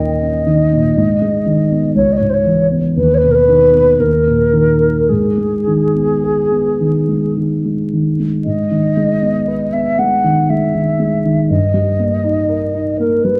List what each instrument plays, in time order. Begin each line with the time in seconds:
Already playing: grand piano D#2 A#2 D#3 C#4 A#4, flute D#5
0.22 grand piano C#4
0.47 grand piano D#3
0.73 grand piano A#2
0.97 grand piano G#2
1.22 grand piano G#3
1.46 grand piano D#3
1.71 grand piano B3
1.95 grand piano C#2, flute C#5
2.12 flute D#5
2.16 grand piano G#2, flute C#5
2.29 flute C5
2.33 flute C#5
2.45 grand piano E3
2.71 grand piano B3
2.97 grand piano D#2, flute B4
3.14 flute B4 C#5
3.23 grand piano B2
3.31 flute A#4 B4
3.49 grand piano D#3
3.74 grand piano B3
4.00 grand piano D#2, flute A#4
4.27 grand piano A#2
4.53 grand piano D#3
4.81 grand piano D#4
5.09 grand piano G#2, flute G#4
5.38 grand piano G#3
5.67 grand piano D#3
5.95 grand piano B3
6.24 grand piano G#4
6.51 grand piano B3
6.81 grand piano D#3
7.08 grand piano G#3
7.37 grand piano D#3
7.65 grand piano G#3
7.93 grand piano D#3
8.20 grand piano G#3
8.44 grand piano G#2, flute D#5
8.71 grand piano D#3
8.97 grand piano G#3
9.22 grand piano B3
9.48 grand piano B4
9.73 grand piano B3, flute E5
9.98 grand piano G#3, flute F#5
10.24 grand piano D#3
10.49 grand piano G#3, flute E5
10.75 grand piano D#3
11.00 grand piano G#3
11.25 grand piano D#3
11.49 grand piano G2, flute D#5
11.74 grand piano G3
11.99 grand piano A#3
12.24 grand piano D#4
12.49 grand piano A#4
12.74 grand piano D#4
13.00 grand piano A#3, flute A#4
13.23 grand piano G3, flute B4